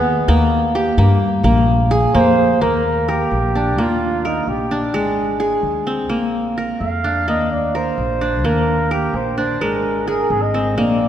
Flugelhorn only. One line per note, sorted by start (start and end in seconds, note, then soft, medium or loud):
2.15 2.63 C5 loud
2.62 3.10 A#4 medium
3.09 3.81 G4 medium
3.80 4.27 F4 medium
4.25 4.50 D#4 medium
4.49 4.83 G4 medium
6.81 7.25 F5 medium
7.28 7.50 D#5 medium
7.52 7.77 D5 medium
7.75 8.47 C5 medium
8.46 8.94 A#4 medium
8.92 9.17 G4 medium
9.15 9.37 C5 medium
9.38 9.63 C5 medium
9.61 10.07 A#4 medium
10.08 10.33 A#4 medium
10.31 10.44 G#4 medium
10.42 10.77 D#5 medium
10.78 11.08 D5 medium